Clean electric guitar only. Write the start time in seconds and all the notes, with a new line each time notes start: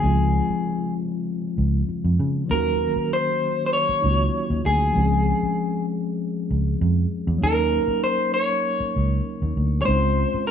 Already playing: G#4
2.51 A#4
3.13 C5
3.66 C5
3.73 C#5
4.66 G#4
7.44 A#4
8.04 C5
8.34 C#5
9.82 C5 C#5
10.47 A#4